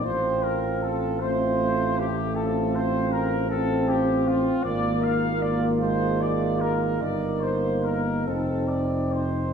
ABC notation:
X:1
M:12/8
L:1/8
Q:3/8=52
K:Fmix
V:1 name="Trumpet section"
c B A c2 G A c B A G F | d f d c d B d c B A d c |]
V:2 name="Flugelhorn"
F3 F2 z F3 F3 | F6 E3 E3 |]
V:3 name="Euphonium"
C3 C2 z C3 C3 | B,6 B,3 C3 |]
V:4 name="Trombone"
C3 A,4- A, z C3 | B,3 _A,3 B,3 C3 |]
V:5 name="Tuba" clef=bass
A,,,12 | _A,,,6 G,,,3 F,,,3 |]